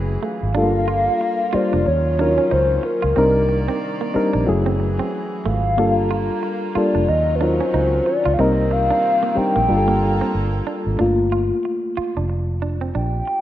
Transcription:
Already playing: fingered electric bass F#1, string section E3 F#3 G#4, reed electric piano F#3 A3 C#4 E4 G#4
0.23 clean electric guitar A3, soft synth lead F5
0.43 fingered electric bass G#1
0.54 fingered electric bass G1, string section G3 A#3 F4, reed electric piano G3 A3 D4 F4 A4, clean electric guitar D4
0.63 reed electric piano A#3
0.88 clean electric guitar F4
1.21 muted clean electric guitar stroke
1.53 reed electric piano G3 A#3 D4 F4 C5, clean electric guitar F4, soft synth lead D5, muted fingered electric bass stroke
1.73 fingered electric bass F1, clean electric guitar D4
1.86 fingered electric bass D#2, string section D#3 F#3 C#4, soft synth lead C#5, muted clean electric guitar stroke
2.19 reed electric piano F#3 C#4 D#4 F4 A#4, clean electric guitar D4
2.38 clean electric guitar C#4
2.51 fingered electric bass C#2, clean electric guitar D#4, soft synth lead C5
2.83 soft synth lead A#4, muted clean electric guitar stroke
3.02 fingered electric bass C#2, clean electric guitar F4
3.16 fingered electric bass C2, string section C3 D#3 A#3 D5, reed electric piano G3 C4 D4 D#4 A#4, clean electric guitar C4
3.49 muted clean electric guitar stroke
3.68 clean electric guitar C4
4.01 clean electric guitar A#3
4.14 reed electric piano G3 C4 D4 D#4 A#4, muted clean electric guitar stroke, muted fingered electric bass stroke
4.33 fingered electric bass A#1, clean electric guitar D4
4.46 fingered electric bass F#1, string section E3 F#3 G#4, reed electric piano F#3 A3 C#4 E4 G#4
4.66 clean electric guitar C4
4.80 muted clean electric guitar stroke
4.99 clean electric guitar C4
5.45 fingered electric bass G#1, clean electric guitar A3, soft synth lead F5
5.76 fingered electric bass G1, string section G3 A#3 F4, reed electric piano G3 A#3 D4 F4 A4, clean electric guitar A#3
6.11 clean electric guitar F4
6.43 muted clean electric guitar stroke
6.75 reed electric piano G3 A#3 D4 F4 A4, clean electric guitar F4, soft synth lead D5, muted fingered electric bass stroke
6.95 fingered electric bass F1, clean electric guitar D4
7.07 fingered electric bass D#2, string section D#3 F#3 C#4, soft synth lead D#5, muted clean electric guitar stroke
7.35 soft synth lead B4
7.41 reed electric piano F#3 C#4 D#4 F4 A#4, clean electric guitar D4, soft synth lead C5
7.61 clean electric guitar C#4
7.74 fingered electric bass C#2, clean electric guitar D#4
8.06 soft synth lead D5, muted clean electric guitar stroke
8.25 fingered electric bass C#2, clean electric guitar F4
8.34 string section C3 D#3 A#3 C4, soft synth lead F5
8.39 fingered electric bass C2, reed electric piano G3 A#3 C4 D#4 A#4, clean electric guitar C4, soft synth lead D#5
8.71 soft synth lead F5, muted clean electric guitar stroke
8.91 clean electric guitar D4
9.23 clean electric guitar A#3
9.36 reed electric piano G3 C4 D4 D#4 A#4, soft synth lead G5, muted clean electric guitar stroke, muted fingered electric bass stroke
9.56 fingered electric bass A#1, clean electric guitar A#3
9.68 fingered electric bass G1, string section G3 A#3 F4 A4, reed electric piano G3 A#3 D4 F4 G4
9.77 reed electric piano A4
9.88 clean electric guitar A#3
10.02 muted clean electric guitar stroke
10.21 clean electric guitar C4
10.35 fingered electric bass G1
10.67 clean electric guitar D4
10.87 fingered electric bass G#1
10.99 fingered electric bass G1, reed electric piano A3 A#3 F4, clean electric guitar D4
11.32 clean electric guitar F4
11.65 muted clean electric guitar stroke
11.97 clean electric guitar F4, muted fingered electric bass stroke
12.17 fingered electric bass F1, clean electric guitar D4
12.30 muted clean electric guitar stroke
12.62 clean electric guitar D4
12.81 clean electric guitar C4
12.95 fingered electric bass A#1, clean electric guitar D4, soft synth lead G5
13.27 muted clean electric guitar stroke

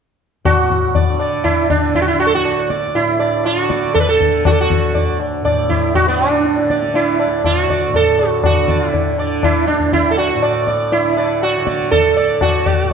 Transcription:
0.44 tanpura A2, sitar F#4, tabla na, tabla ge
0.70 tabla ge
0.95 sitar D5, tabla tin, tabla ge
1.07 tanpura D3
1.19 sitar D5, tabla na
1.44 sitar E4, tabla na, tabla ge
1.69 tanpura D3, sitar D4, tabla ge
1.95 sitar E4, tabla tin, tabla ge
2.02 sitar F#4
2.08 sitar E4
2.20 sitar F#4, tabla na
2.27 sitar A4
2.31 tanpura D2, sitar F#4
2.45 tabla na
2.70 sitar D5, tabla ke
2.94 tanpura A2, sitar E4, tabla tin
3.19 sitar D5, tabla na
3.45 sitar F4, tabla na
3.55 tanpura D3
3.61 sitar F#4
3.69 sitar D5, tabla ke
3.94 sitar A4, tabla na, tabla ge
4.00 sitar B4
4.09 sitar A4
4.18 tanpura D3, tabla ge
4.45 sitar F#4, tabla na, tabla ge
4.52 sitar A4
4.61 sitar F#4
4.70 tabla ge
4.79 tanpura D2
4.94 sitar D5, tabla tin, tabla ge
5.20 tabla na
5.41 tanpura A2, sitar D5
5.45 tabla na, tabla ge
5.70 sitar E4, tabla ge
5.95 sitar F#4, tabla tin, tabla ge
6.02 tanpura D3
6.08 sitar B3
6.20 tabla na
6.31 sitar D4
6.45 tabla te
6.58 tabla te
6.64 tanpura D3
6.70 sitar D5, tabla ke
6.82 tabla te
6.94 sitar E4, tabla tin
7.19 sitar D5, tabla na
7.26 tanpura D2
7.44 sitar F4, tabla na, tabla ge
7.60 sitar F#4
7.69 sitar D5, tabla ge
7.88 tanpura A2
7.94 sitar A4, tabla tin, tabla ge
8.19 tabla na
8.29 sitar F#4
8.44 sitar F#4, tabla na, tabla ge
8.50 tanpura D3
8.68 sitar D5, tabla ge
8.91 sitar E4, tabla tin, tabla ge
9.11 tanpura D3
9.18 sitar D5, tabla na
9.43 sitar E4, tabla na, tabla ge
9.67 sitar D4, tabla te
9.73 tanpura D2
9.80 tabla ge
9.93 sitar E4, tabla tin, tabla ge
10.11 sitar A4
10.17 sitar F#4, tabla na
10.35 tanpura A2
10.42 sitar D5, tabla na
10.67 sitar D5, tabla ke
10.92 sitar E4, tabla tin
10.96 tanpura D3
11.17 sitar D5, tabla na
11.42 sitar F#4, tabla na
11.57 tanpura D3
11.66 sitar D5, tabla ke
11.91 sitar A4, tabla tin, tabla ge
12.17 tanpura D2, sitar D5, tabla na
12.41 sitar F#4, tabla na, tabla ge
12.66 sitar D5, tabla ge
12.81 tanpura A2

